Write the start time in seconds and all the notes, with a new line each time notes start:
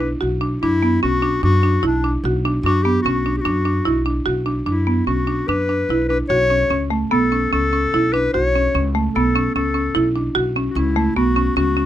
Already playing: B1
0.01 D4
0.21 B1 F#4
0.41 D4
0.62 F#2 D4 E4
0.83 B3
1.03 B1 C#4 F#4
1.22 D4
1.43 F#2 D4 F#4
1.63 D4
1.83 B1 D4 E4
2.04 D4
2.23 B1 F#4
2.45 D4
2.63 F#2 D4 F#4
2.83 B3 G4
3.02 B1 C#4 F#4
3.26 D4
3.37 F#4 G4
3.45 F#2 D4
3.65 D4
3.85 B1 E4
4.06 D4
4.26 B1 F#4
4.46 D4
4.66 F#2 D4 E4
4.87 B3
5.06 B1 C#4 F#4
5.27 D4
5.47 F#2 D4 B4
5.69 D4
5.89 B1 E4
6.08 D4 B4
6.29 B1 F#4 C#5
6.50 C#4
6.70 C#2 C#4
6.90 A3
7.11 B1 B3 A4
7.32 C#4
7.52 C#2 C#4 A4
7.73 C#4
7.94 B1 E4
8.13 D4 B4
8.33 B1 F#4 C#5
8.56 C#4
8.74 C#2 C#4
8.95 A3
9.15 B1 B3 A4
9.35 C#4
9.55 C#2 C#4 A4
9.74 C#4
9.95 B1 E4
10.16 D4
10.35 B1 F#4
10.56 C#4
10.70 F#4
10.75 C#2 C#4 E4
10.96 A3
11.16 B1 B3 F#4
11.36 C#4
11.56 C#2 C#4 F#4
11.77 C#4